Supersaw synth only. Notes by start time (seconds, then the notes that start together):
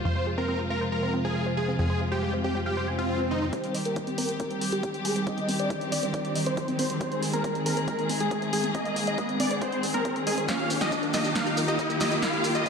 0.05 C5
0.38 A#4
0.70 A#4
0.92 A#4
1.25 G#4
1.57 G#4
1.79 G#4
2.12 G4
2.44 G4
2.66 G4
2.98 F4
3.31 D#4
3.53 C5
3.85 A#4
4.18 A#4
4.40 A#4
4.72 G4
5.05 G#4
5.27 D#5
5.59 D5
5.92 D5
6.14 D5
6.46 C5
6.79 C5
7.01 C5
7.33 A#4
7.66 A#4
7.88 A#4
8.20 G#4
8.53 G#4
8.75 D#5
9.07 D#5
9.40 D5
9.62 C5
9.94 A#4
10.27 G#4
10.48 F5
10.81 D#5
11.14 D#5
11.36 F5
11.68 D#5
12.01 D#5
12.22 F5
12.55 D#5